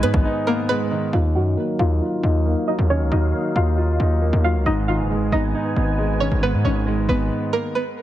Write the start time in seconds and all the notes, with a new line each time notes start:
Already playing: G#2 D#3 G#3 B3 D#4 B4 G#5
0.03 G#2 B3 B4, closed hi-hat
0.14 G#1, kick
0.25 D#4
0.47 A#3 B3 A#4
0.69 G#3 B3 B4
0.91 D#3
1.13 D#2 D#3 F#3 D#4 F4 F5
1.35 F#2 F#3 F#4 F#5
1.57 A#3
1.79 D#2 D#4 F4 F5
2.01 F4
2.23 D#2 D#4
2.45 A#3
2.67 F#3 D#4 D#5
2.79 D#2
2.90 D#3 C#4 C#5
3.01 C#2
3.12 D#2 F#3 D#4 D#5
3.34 A#3
3.56 D#2 D#4 F4 F5
3.78 F4
4.00 D#2 D#4
4.22 A#3
4.33 D#2
4.44 F#3 F4 F5
4.55 C#2
4.66 G#1 G#2 D#4 B4 D#5 G#5
4.88 D#3 F4 F5
4.99 F#1
5.10 G#3
5.16 G#1
5.32 G#1 B3 D#4 D#5
5.54 D#4
5.76 G#1 B3
5.98 G#3
6.20 D#3 C#4 C#5
6.32 G#1
6.42 G#2 B3 B4
6.54 G#2
6.64 G#1 D#3 C#4 C#5
6.87 G#3
7.09 G#1 B3 B4
7.53 A#3 A#4
7.75 B3 B4